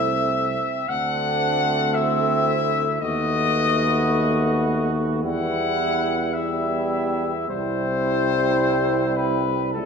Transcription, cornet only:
0.00 0.90 E5 loud
0.89 1.96 F#5 loud
1.94 3.01 E5 loud
3.02 4.92 D#5 loud
5.23 6.35 F#5 loud
6.34 7.49 E5 loud
7.49 9.19 C5 loud
9.17 9.73 B4 loud
9.73 9.85 A4 loud

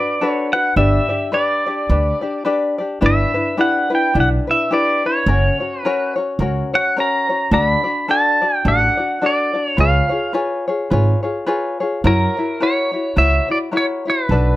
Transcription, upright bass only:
0.76 0.98 G1 medium
1.89 2.11 D2 medium
3.02 3.23 G1 medium
4.15 4.36 B1 medium
5.26 5.48 F#1 medium
6.39 6.61 C#2 medium
7.51 7.73 D2 medium
8.65 8.87 A1 medium
9.78 9.99 C#2 medium
10.91 11.13 G#1 medium
12.04 12.25 F#2 medium
13.17 13.38 C#2 medium
14.29 14.50 B1 medium

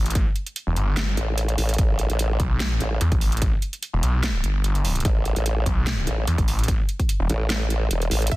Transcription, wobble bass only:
1.17 1.57 A1 loud
1.58 1.77 A1 loud
1.78 2.08 A1 loud
2.10 2.38 A1 loud
2.81 2.99 A1 loud
5.05 5.35 A1 loud
5.36 5.65 A1 loud
6.07 6.26 A1 loud
7.29 7.89 A1 medium
7.91 8.10 E1 loud
8.11 8.30 A1 loud
8.32 8.37 A1 loud

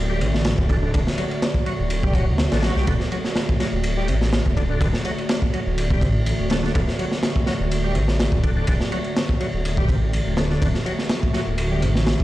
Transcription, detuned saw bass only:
0.00 0.22 D1 loud
0.21 0.52 A1 loud
0.58 0.89 D1 medium
0.94 1.03 D1 loud
1.79 2.29 D1 loud
2.28 2.45 D2 loud
2.52 2.69 A1 loud
2.76 2.84 C2 medium
2.88 2.97 D1 loud
3.73 4.10 D1 loud
4.08 4.40 A1 loud
4.46 4.76 D1 medium
4.81 4.90 D1 loud
5.67 6.03 D1 loud
6.01 6.33 A1 loud
6.39 6.70 D1 medium
6.75 6.84 D1 loud
7.60 7.97 D1 loud
7.95 8.27 A1 loud
8.32 8.63 D1 medium
8.68 8.77 D1 loud
9.54 9.90 D1 loud
9.89 10.20 A1 loud
10.27 10.57 D1 medium
10.62 10.71 D1 loud
11.47 11.84 D1 loud
11.83 12.14 A1 loud
12.20 12.24 D1 medium

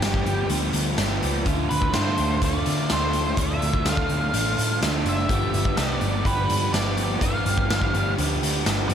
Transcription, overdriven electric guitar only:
0.00 0.26 G2 loud
0.00 0.26 D3 loud
0.00 0.49 F3 medium
0.00 0.50 G3 medium
0.00 0.50 B3 medium
0.00 0.50 G4 medium
0.49 1.22 G2 medium
0.49 1.22 D3 medium
0.49 0.97 F3 medium
0.49 0.97 G3 medium
0.49 0.98 B3 loud
0.49 0.99 G4 loud
0.98 1.46 F3 medium
0.98 1.45 G3 medium
0.98 1.45 B3 medium
0.98 1.46 G4 medium
1.46 1.94 D3 loud
1.46 1.94 A3 loud
1.46 1.95 D4 loud
1.46 1.95 F4 loud
1.94 2.41 D3 medium
1.94 2.41 A3 medium
1.94 2.43 D4 medium
1.94 2.44 F4 medium
2.43 2.90 D3 medium
2.43 2.91 A3 medium
2.43 2.92 D4 medium
2.43 2.92 F4 loud
2.91 3.37 D3 medium
2.91 3.38 A3 medium
2.91 3.39 D4 medium
2.91 3.40 F4 medium
3.38 3.85 D3 medium
3.38 3.86 A3 loud
3.38 3.88 D4 loud
3.38 3.89 F4 medium
3.86 4.32 D3 medium
3.86 4.32 A3 medium
3.86 4.34 D4 medium
3.86 4.34 F4 medium
4.33 4.79 D3 medium
4.33 4.80 A3 loud
4.33 4.82 D4 medium
4.33 4.82 F4 loud
4.80 5.28 D3 medium
4.80 5.28 A3 medium
4.80 5.30 D4 medium
4.80 5.31 F4 medium
5.29 6.25 G2 loud
5.29 6.02 D3 loud
5.29 5.77 F3 loud
5.29 5.78 G3 medium
5.29 5.79 B3 loud
5.29 5.79 G4 loud
5.77 6.25 F3 medium
5.77 6.25 G3 medium
5.77 6.26 B3 medium
5.77 6.25 G4 medium
6.25 6.97 G2 medium
6.25 6.98 D3 medium
6.25 6.72 F3 medium
6.25 6.72 G3 medium
6.25 6.72 B3 loud
6.25 6.73 G4 medium
6.72 7.21 F3 medium
6.72 7.20 G3 medium
6.72 7.20 B3 medium
6.72 7.21 G4 medium
7.20 7.93 G2 medium
7.20 7.93 D3 medium
7.20 7.68 F3 medium
7.20 7.68 G3 loud
7.20 7.69 B3 loud
7.20 7.70 G4 loud
7.69 8.17 F3 medium
7.69 8.18 G3 medium
7.69 8.18 B3 medium
7.69 8.18 G4 medium
8.17 8.89 G2 medium
8.17 8.90 D3 loud
8.17 8.66 F3 loud
8.17 8.65 G3 medium
8.17 8.66 B3 loud
8.17 8.67 G4 loud
8.66 8.94 F3 medium
8.66 8.94 G3 medium
8.66 8.94 B3 medium
8.66 8.94 G4 medium

